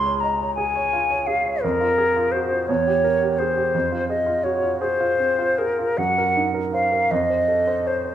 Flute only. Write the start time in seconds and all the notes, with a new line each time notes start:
Already playing: C6
0.20 A#5
0.55 G#5
1.27 F5
1.62 A#4
2.32 C5
2.68 C#5
3.39 C5
4.09 D#5
4.44 C#5
4.80 C5
5.58 A#4
5.98 F#5
6.73 F5
7.11 D#5
7.87 C5